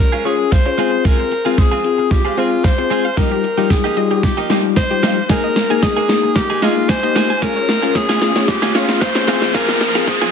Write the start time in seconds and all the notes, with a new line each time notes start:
0.00 A#4
0.12 G#3 C#4 F4 G#4 F5
0.25 G#3 C#4 F4 G#4 C#5
0.39 muted clean electric guitar stroke
0.52 C5 F5, muted clean electric guitar stroke, kick, snare
0.66 C#4 F4 G#4 C#5, muted clean electric guitar stroke
0.78 G#3 C4 F4 G#4 F5
0.92 muted clean electric guitar stroke
1.04 G#3 C4 F4 G#4 A#4 F5, kick, snare, closed hi-hat
1.19 C5, muted clean electric guitar stroke
1.31 muted clean electric guitar stroke, closed hi-hat
1.45 G#3 C4 F4 G#4 F5
1.51 A#4
1.58 G#4 C5, muted clean electric guitar stroke, kick, snare, closed hi-hat
1.71 G#3 C4 F4 G#4
1.84 C4 F4 G#4, muted clean electric guitar stroke, closed hi-hat
1.98 muted clean electric guitar stroke
2.11 F4 G4, muted clean electric guitar stroke, kick, snare, closed hi-hat
2.25 G#3 C4 F4 G#4 F5
2.37 G#3 C4 F4 G#4 C5, closed hi-hat
2.52 muted clean electric guitar stroke
2.64 C5 F5, muted clean electric guitar stroke, kick, snare, closed hi-hat
2.78 C4 F4 G#4 C5, muted clean electric guitar stroke
2.90 G#3 C4 F4 G#4, closed hi-hat
3.05 F5, muted clean electric guitar stroke
3.17 F3 G3 A#3 D#4 F4 G4 A#4 D#5, kick, snare, closed hi-hat
3.31 G4, muted clean electric guitar stroke
3.44 muted clean electric guitar stroke, closed hi-hat
3.58 F3 G3 A#3 D#4 F4 G4
3.70 G4 G#4, kick, snare, closed hi-hat
3.84 F3 A#3 D#4 G4
3.97 G3 D#4 F4 G4 D#5, muted clean electric guitar stroke, closed hi-hat
4.11 G4, muted clean electric guitar stroke
4.23 G4, muted clean electric guitar stroke, kick, snare, closed hi-hat
4.37 F3 A#3 D#4 G4 D#5
4.50 F3 G3 A#3 D#4 F4 G4, snare, closed hi-hat
4.64 muted clean electric guitar stroke
4.76 C5 D#5, muted clean electric guitar stroke, kick, snare, closed hi-hat
4.90 G3 D#4 F4 G4, muted clean electric guitar stroke
5.03 F3 A#3 D#4 G4 F5, snare, closed hi-hat
5.17 muted clean electric guitar stroke
5.29 G#3 A#3 D#4 G#4 A#4 G#5, kick, snare, closed hi-hat, riser
5.44 D#5, muted clean electric guitar stroke
5.56 muted clean electric guitar stroke, snare, closed hi-hat
5.70 G#3 A#3 D#4 G#4 G#5
5.83 G#4 D#5, muted clean electric guitar stroke, kick, snare, closed hi-hat
5.96 G#3 A#3 D#4 G#4 A#4
6.09 A#3 D#4 G#4, snare, closed hi-hat
6.23 muted clean electric guitar stroke
6.35 G4 A#4, muted clean electric guitar stroke, kick, snare, closed hi-hat
6.50 G#3 A#3 D#4 G#4 G#5
6.62 G#3 A#3 D#4 F4 G#4 D#5, snare, closed hi-hat
6.76 muted clean electric guitar stroke
6.89 C5 G#5, muted clean electric guitar stroke, kick, snare, closed hi-hat
7.03 A#3 D#4 G4 D#5, muted clean electric guitar stroke
7.15 G#3 A#3 D#4 G#4, snare, closed hi-hat
7.30 G#5, muted clean electric guitar stroke
7.42 G#3 C#4 F4 G#4 A#4 F5, kick, snare, closed hi-hat
7.56 C#5, muted clean electric guitar stroke
7.68 muted clean electric guitar stroke, snare, open hi-hat
7.82 G#3 C#4 F4 G#4 A#4
7.95 G#4 C#5, kick, snare, closed hi-hat
8.09 G#3 C#4 F4 G#4, snare
8.22 C#4 F4 G#4 F5, muted clean electric guitar stroke, snare, open hi-hat
8.36 C#5, muted clean electric guitar stroke, snare
8.48 G4, muted clean electric guitar stroke, kick, snare, closed hi-hat
8.62 G#3 C#4 F4 G#4 F5, snare
8.74 G#3 C#4 F4 G#4 C#5, snare, open hi-hat
8.89 muted clean electric guitar stroke, snare
9.01 C5 F5, muted clean electric guitar stroke, kick, snare, closed hi-hat
9.15 C#4 F4 G#4 C#5, muted clean electric guitar stroke, snare
9.27 G#3 C4 F4 G#4 F5, snare, open hi-hat
9.42 muted clean electric guitar stroke, snare
9.54 G#3 C4 F4 G#4 A#4 F5, kick, snare, closed hi-hat, shaker
9.68 C5, muted clean electric guitar stroke, snare, shaker
9.81 muted clean electric guitar stroke, snare, open hi-hat, shaker
9.95 G#3 C4 F4 G#4 F5, snare, shaker
10.07 G#4 C5, muted clean electric guitar stroke, kick, snare, closed hi-hat, shaker
10.21 G#3 C4 F4 G#4, snare, shaker